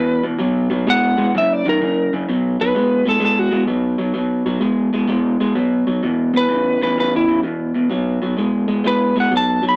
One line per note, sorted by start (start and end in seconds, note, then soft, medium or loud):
0.00 0.21 E2 medium
0.00 0.21 B2 loud
0.00 0.24 B4 medium
0.23 0.38 E2 medium
0.23 0.37 B2 medium
0.39 0.67 B2 medium
0.39 0.68 F#3 loud
0.70 0.85 B2 medium
0.70 0.85 F#3 medium
0.87 1.15 B2 loud
0.87 1.15 G#3 loud
0.87 1.34 F#5 loud
1.17 1.32 B2 medium
1.17 1.32 G#3 loud
1.35 1.62 F#2 medium
1.35 1.62 C#3 loud
1.35 1.53 E5 medium
1.53 1.66 D5 medium
1.66 1.79 F#2 medium
1.66 1.79 D#3 loud
1.66 2.12 A#4 medium
1.82 2.09 F#2 medium
1.82 2.09 C#3 medium
2.13 2.26 F#2 medium
2.13 2.27 C#3 medium
2.29 2.56 B2 medium
2.29 2.56 F#3 medium
2.61 2.74 B2 medium
2.61 2.74 F#3 medium
2.61 3.05 B4 medium
2.75 3.03 B2 medium
2.75 3.03 G#3 medium
3.06 3.19 B2 medium
3.06 3.19 G#3 medium
3.06 3.22 A4 medium
3.20 3.49 B2 medium
3.20 3.49 G#3 medium
3.25 3.39 A4 medium
3.39 3.63 F#4 medium
3.51 3.66 B2 medium
3.51 3.66 G#3 medium
3.67 3.96 B2 medium
3.67 3.96 F#3 medium
3.98 4.13 B2 medium
3.98 4.13 F#3 medium
4.14 4.42 B2 medium
4.14 4.43 F#3 medium
4.46 4.59 B2 medium
4.46 4.60 F#3 medium
4.60 4.89 B2 medium
4.60 4.89 G#3 medium
4.93 5.06 B2 medium
4.93 5.07 G#3 medium
5.08 5.36 B2 medium
5.08 5.37 G#3 medium
5.40 5.54 B2 medium
5.40 5.54 G#3 medium
5.55 5.84 B2 medium
5.55 5.84 F#3 medium
5.87 6.01 B2 medium
5.87 6.01 F#3 medium
6.03 6.31 E2 medium
6.03 6.31 B2 medium
6.34 6.48 E2 medium
6.34 6.48 B2 medium
6.34 6.81 B4 loud
6.49 6.77 E2 medium
6.49 6.78 C#3 medium
6.82 6.95 E2 medium
6.82 6.96 C#3 medium
6.82 6.97 B4 medium
6.97 7.25 E2 medium
6.97 7.25 C#3 loud
6.97 7.13 B4 medium
7.16 7.39 E4 medium
7.28 7.42 E2 medium
7.28 7.42 C#3 medium
7.43 7.71 E2 medium
7.43 7.72 B2 medium
7.75 7.89 E2 medium
7.75 7.88 B2 medium
7.90 8.18 B2 medium
7.90 8.19 F#3 medium
8.22 8.36 B2 medium
8.22 8.36 F#3 medium
8.37 8.65 B2 medium
8.37 8.66 G#3 medium
8.68 8.82 B2 medium
8.68 8.82 G#3 medium
8.84 9.12 B2 medium
8.84 9.12 G#3 medium
8.84 9.16 B4 medium
9.16 9.29 B2 medium
9.16 9.30 G#3 medium
9.20 9.33 F#5 medium
9.31 9.59 B2 medium
9.31 9.59 F#3 medium
9.37 9.64 A5 loud
9.62 9.76 B2 medium
9.62 9.76 F#3 medium
9.69 9.76 B5 medium